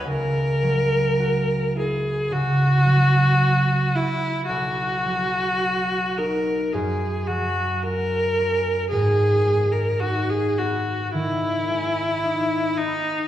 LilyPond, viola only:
\new Staff \with { instrumentName = "Viola" } { \time 4/4 \key fis \mixolydian \tempo 4 = 55 ais'4. gis'8 fis'4. e'8 | fis'4. ais'8 gis'8 fis'8 ais'4 | gis'8. ais'16 fis'16 gis'16 fis'8 e'4. dis'8 | }